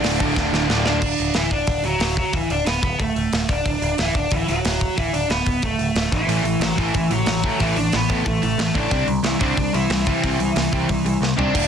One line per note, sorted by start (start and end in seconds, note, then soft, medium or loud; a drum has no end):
0.00 0.18 D1 medium
0.00 0.18 D2 loud
0.00 0.19 D2 medium
0.00 0.19 A2 medium
0.00 0.18 D3 loud
0.00 0.65 D4 loud
0.00 0.65 D5 medium
0.00 open hi-hat medium
0.05 snare loud
0.20 0.35 D1 medium
0.20 0.34 D2 medium
0.20 0.35 A2 loud
0.20 0.36 D3 loud
0.20 kick loud
0.36 0.51 D1 medium
0.36 0.52 D2 medium
0.36 0.52 A2 medium
0.36 0.51 D3 medium
0.36 kick loud
0.36 snare medium
0.52 0.67 D1 medium
0.52 0.67 D2 medium
0.52 0.67 A2 loud
0.52 0.67 D3 loud
0.52 snare medium
0.68 0.99 D1 medium
0.68 0.85 D2 medium
0.68 0.85 A2 medium
0.68 0.84 D3 loud
0.68 snare loud
0.86 1.01 D2 medium
0.86 1.01 A2 medium
0.86 1.01 D3 loud
0.86 1.33 D4 loud
0.86 1.32 D5 medium
0.86 snare medium
1.02 1.13 D1 medium
1.02 kick loud
1.02 crash loud
1.18 1.30 D1 medium
1.18 open hi-hat medium
1.34 1.46 D1 medium
1.34 1.50 E3 medium
1.34 1.54 E4 medium
1.34 snare medium
1.34 open hi-hat medium
1.51 1.62 D1 medium
1.51 1.85 D4 medium
1.51 1.82 D5 medium
1.51 kick medium
1.67 1.79 D1 medium
1.67 kick loud
1.67 open hi-hat medium
1.83 1.94 D1 medium
1.83 2.15 F#3 medium
1.83 2.17 F#4 loud
1.83 open hi-hat medium
1.99 2.22 D1 medium
1.99 snare loud
1.99 open hi-hat medium
2.17 2.32 F#3 medium
2.17 2.35 F#4 loud
2.17 kick medium
2.33 2.44 D1 medium
2.33 2.49 E3 medium
2.33 2.52 E4 medium
2.33 kick loud
2.33 open hi-hat medium
2.50 2.61 D1 medium
2.50 2.68 D4 medium
2.50 2.66 D5 medium
2.50 open hi-hat medium
2.66 2.78 D1 medium
2.66 2.82 B3 medium
2.66 2.81 B4 medium
2.66 snare loud
2.66 open hi-hat medium
2.82 2.94 D1 medium
2.82 3.00 B3 medium
2.82 2.98 B4 medium
2.82 kick medium
2.82 open hi-hat medium
2.99 3.11 D1 medium
2.99 3.51 A3 medium
2.99 3.46 A4 medium
2.99 kick loud
2.99 open hi-hat medium
3.16 3.27 D1 medium
3.16 open hi-hat soft
3.33 3.44 D1 medium
3.33 snare loud
3.33 open hi-hat medium
3.49 3.60 D1 medium
3.49 3.99 D4 medium
3.49 3.95 D5 medium
3.49 kick medium
3.49 open hi-hat soft
3.66 3.77 D1 medium
3.66 kick loud
3.66 open hi-hat medium
3.82 3.93 D1 medium
3.82 open hi-hat medium
3.98 4.10 D1 medium
3.98 4.14 E3 medium
3.98 4.15 E4 medium
3.98 snare loud
3.98 open hi-hat medium
4.15 4.26 D1 medium
4.15 4.32 D4 medium
4.15 4.33 D5 medium
4.15 kick medium
4.15 open hi-hat medium
4.31 4.43 D1 medium
4.31 4.47 E3 medium
4.31 4.49 E4 medium
4.31 kick loud
4.31 open hi-hat medium
4.47 4.60 D1 medium
4.47 4.93 F#3 medium
4.47 4.99 F#4 loud
4.47 open hi-hat medium
4.65 4.87 D1 medium
4.65 snare loud
4.65 open hi-hat medium
4.81 kick medium
4.81 open hi-hat medium
4.97 5.09 D1 medium
4.97 5.12 E3 medium
4.97 5.14 E4 medium
4.97 kick loud
4.97 open hi-hat medium
5.13 5.25 D1 medium
5.13 5.31 D4 medium
5.13 5.29 D5 medium
5.13 open hi-hat medium
5.30 5.41 D1 medium
5.30 5.64 B3 medium
5.30 5.61 B4 medium
5.30 snare loud
5.30 open hi-hat medium
5.46 5.58 D1 medium
5.46 kick medium
5.46 open hi-hat medium
5.62 5.74 D1 medium
5.62 6.14 A3 medium
5.62 6.10 A4 medium
5.62 kick loud
5.62 open hi-hat medium
5.79 5.90 D1 medium
5.79 open hi-hat medium
5.95 6.07 D1 medium
5.95 snare loud
5.95 open hi-hat medium
6.12 6.23 A1 medium
6.12 6.58 E3 medium
6.12 6.63 E4 medium
6.12 kick medium
6.12 open hi-hat soft
6.27 6.39 A1 medium
6.27 6.43 A2 medium
6.27 6.44 E3 medium
6.27 6.45 A3 medium
6.27 open hi-hat medium
6.43 6.55 A1 medium
6.43 6.60 A2 medium
6.43 6.60 E3 medium
6.43 open hi-hat medium
6.60 6.72 A1 medium
6.60 6.76 A2 medium
6.60 6.76 E3 medium
6.60 6.77 F#3 medium
6.60 6.79 F#4 medium
6.60 snare loud
6.60 open hi-hat medium
6.77 6.89 A1 medium
6.77 6.93 A2 medium
6.77 7.08 E3 medium
6.77 6.93 E3 medium
6.77 6.94 A3 medium
6.77 7.12 E4 medium
6.77 kick medium
6.77 open hi-hat medium
6.94 7.06 A1 medium
6.94 7.09 A2 medium
6.94 7.09 E3 medium
6.94 kick loud
6.94 open hi-hat medium
7.10 7.22 A1 medium
7.10 7.25 A2 medium
7.10 7.26 E3 medium
7.10 7.57 F#3 medium
7.10 7.62 F#4 medium
7.10 open hi-hat medium
7.26 7.49 A1 medium
7.26 7.42 A2 medium
7.26 7.42 E3 medium
7.26 snare loud
7.26 open hi-hat medium
7.43 7.60 A2 medium
7.43 7.59 E3 medium
7.43 7.60 A3 medium
7.43 kick medium
7.43 open hi-hat medium
7.60 7.72 A1 medium
7.60 7.75 A2 medium
7.60 7.76 E3 medium
7.60 7.76 A3 medium
7.60 7.76 E4 medium
7.60 kick loud
7.60 open hi-hat medium
7.76 7.88 A1 medium
7.76 7.91 A2 medium
7.76 7.92 E3 medium
7.76 7.94 D4 medium
7.76 7.92 D5 medium
7.76 open hi-hat medium
7.92 8.05 A1 medium
7.92 8.07 A2 medium
7.92 8.07 E3 medium
7.92 8.27 B3 medium
7.92 8.25 B4 medium
7.92 snare loud
7.92 open hi-hat medium
8.08 8.21 A1 medium
8.08 8.24 A2 medium
8.08 8.24 E3 medium
8.08 8.24 A3 loud
8.08 kick medium
8.08 open hi-hat medium
8.25 8.38 A1 medium
8.25 8.40 A2 medium
8.25 8.40 E3 medium
8.25 8.77 A3 medium
8.25 8.73 A4 medium
8.25 kick loud
8.25 open hi-hat medium
8.42 8.54 A1 medium
8.42 8.57 A2 medium
8.42 8.57 E3 medium
8.42 open hi-hat soft
8.58 8.70 A1 medium
8.58 8.73 A2 medium
8.58 8.73 E3 medium
8.58 snare loud
8.58 open hi-hat medium
8.74 8.86 A1 medium
8.74 8.90 A2 medium
8.74 8.90 E3 medium
8.74 8.91 A3 medium
8.74 9.06 D4 medium
8.74 9.06 D5 medium
8.74 kick medium
8.74 open hi-hat soft
8.91 9.03 C2 medium
8.91 9.06 C3 medium
8.91 9.07 G3 medium
8.91 9.07 C4 medium
8.91 kick loud
8.91 open hi-hat medium
9.07 9.19 C2 medium
9.07 9.22 C3 medium
9.07 9.22 G3 medium
9.07 open hi-hat soft
9.23 9.35 C2 medium
9.23 9.38 C3 medium
9.23 9.40 E3 medium
9.23 9.38 G3 medium
9.23 9.39 E4 medium
9.23 snare loud
9.23 open hi-hat medium
9.39 9.52 C2 medium
9.39 9.56 C3 medium
9.39 9.56 G3 medium
9.39 9.56 C4 medium
9.39 9.71 D4 medium
9.39 9.72 D5 medium
9.39 kick medium
9.39 open hi-hat soft
9.57 9.69 C2 medium
9.57 9.72 C3 medium
9.57 9.72 G3 medium
9.57 kick loud
9.57 open hi-hat medium
9.73 9.85 C2 medium
9.73 9.89 C3 medium
9.73 10.05 E3 medium
9.73 9.89 G3 medium
9.73 10.05 E4 medium
9.73 open hi-hat medium
9.90 10.13 C2 medium
9.90 10.05 C3 medium
9.90 10.05 G3 medium
9.90 snare loud
9.90 open hi-hat medium
10.06 10.22 C3 medium
10.06 11.18 E3 medium
10.06 10.22 G3 loud
10.06 10.22 C4 loud
10.06 11.17 E4 medium
10.06 kick medium
10.06 open hi-hat medium
10.24 10.35 C2 medium
10.24 10.39 C3 medium
10.24 10.39 G3 medium
10.24 10.39 C4 loud
10.24 kick loud
10.24 open hi-hat medium
10.39 10.51 C2 medium
10.39 10.55 C3 medium
10.39 10.55 G3 medium
10.39 open hi-hat medium
10.56 10.67 C2 medium
10.56 10.71 C3 medium
10.56 10.71 G3 medium
10.56 snare loud
10.56 open hi-hat medium
10.72 10.84 C2 medium
10.72 10.88 C3 medium
10.72 10.88 G3 medium
10.72 10.89 C4 medium
10.72 kick medium
10.72 open hi-hat medium
10.89 11.01 C2 medium
10.89 11.04 C3 medium
10.89 11.04 G3 medium
10.89 kick loud
10.89 open hi-hat medium
11.05 11.16 C2 medium
11.05 11.20 C3 medium
11.05 11.20 G3 medium
11.05 open hi-hat soft
11.21 11.32 C2 medium
11.21 11.36 C3 medium
11.21 11.37 G3 medium
11.21 snare medium
11.37 11.49 C2 medium
11.37 11.53 C3 medium
11.37 11.53 G3 medium
11.37 11.54 C4 medium
11.37 11.68 D4 medium
11.37 11.68 D5 medium
11.37 floor tom medium
11.53 11.68 D1 medium
11.53 11.68 D2 loud
11.53 11.68 A2 loud
11.53 11.68 D3 loud
11.53 kick loud
11.53 crash loud